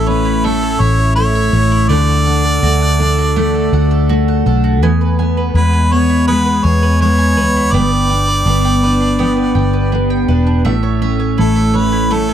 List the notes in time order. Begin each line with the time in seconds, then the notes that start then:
Already playing: A1 A2 A3 E4 A4 E5
0.07 C#4 B4 C#5
0.25 E4
0.44 A3 A4 E5
0.63 C#5
0.80 A1 E4 C#5 E5
0.99 C#5
1.16 A3 E4 C#5
1.35 E5
1.53 A1 C#4 C#5
1.71 E4
1.88 D2 D3 A3 D5 F#5
2.08 A4
2.26 D4 F#5
2.45 A4
2.63 D2 A3 F#4
2.81 F#5
3.00 D4 A4
3.18 F#4
3.36 A3 F#5
3.55 A4
3.73 D2 F#4 F#5
3.91 A4
4.09 A3 F#4
4.28 F#5
4.46 B1 D4 A4
4.64 F#4
4.82 E2 B3 G#5
5.01 B4
5.19 B3 G#5
5.37 B4
5.54 E2 G#3 E4 B4
5.73 G#5
5.92 B3 B4 C#5
6.09 E4
6.28 G#3 B3 B4 G#5
6.46 B4
6.64 E2 G#4 C#5 G#5
6.83 B4
7.00 G#3 E4 C#5
7.19 G#5
7.37 D2 B3 B4
7.56 E4
7.73 G1 G2 B3 D5 G5
7.92 B4
8.10 D4 G5
8.28 B4
8.46 G1 B3 D4
8.65 G5
8.83 D4 B4
9.00 D4
9.19 B3 G5
9.37 B4
9.55 G1 G4 G5
9.73 B4
9.92 B3 D4
10.10 G5
10.28 E1 D4 B4
10.47 D4
10.65 A1 A2 A3 E5
10.83 C#5
11.02 C#4 E5
11.20 C#5
11.38 A1 A3 E4 A4
11.56 E5
11.74 C#4 B4 C#5
11.92 E4
12.11 A3 A4 E5
12.29 C#5